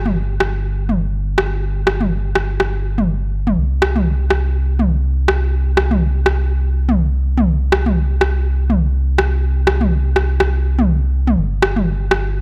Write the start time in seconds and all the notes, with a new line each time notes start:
Already playing: G1
0.06 mid tom
0.40 cross-stick
0.89 mid tom
1.38 cross-stick
1.87 cross-stick
2.01 mid tom
2.35 cross-stick
2.60 cross-stick
2.98 mid tom
3.47 mid tom
3.58 C2
3.82 cross-stick
3.96 mid tom
4.30 cross-stick
4.79 mid tom
5.28 cross-stick
5.77 cross-stick
5.91 mid tom
6.26 cross-stick
6.89 mid tom
7.38 mid tom
7.72 cross-stick
7.86 mid tom
8.21 cross-stick
8.70 mid tom
9.18 cross-stick
9.67 cross-stick
9.81 mid tom
10.16 cross-stick
10.40 cross-stick
10.79 mid tom
11.27 mid tom
11.38 G1
11.62 cross-stick
11.76 mid tom
12.11 cross-stick